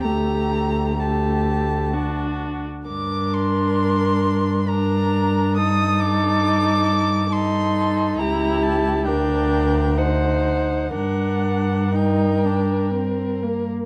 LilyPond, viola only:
\new Staff \with { instrumentName = "Viola" } { \time 3/4 \key g \minor \tempo 4 = 65 a4 a4 d'4 | d'2 d'4 | ees'2 ees'4 | e'4 d'4 ees'4 |
d'4 ees'8 d'8 c'8 bes8 | }